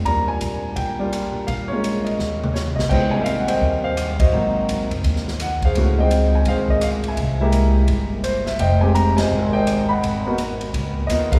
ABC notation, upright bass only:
X:1
M:4/4
L:1/8
Q:"Swing" 1/4=168
K:Eb
V:1 name="Upright bass" clef=bass
E,,2 B,,2 B,,,3 z | B,,,4 E,,3 B,,, | [K:Ab] A,,,4 E,,4 | A,,,3 _G,,, E,,4 |
D,,4 A,,,4 | C,,4 G,,,4 | F,,,4 A,,,4 | A,,,4 D,,2 E,,2 |]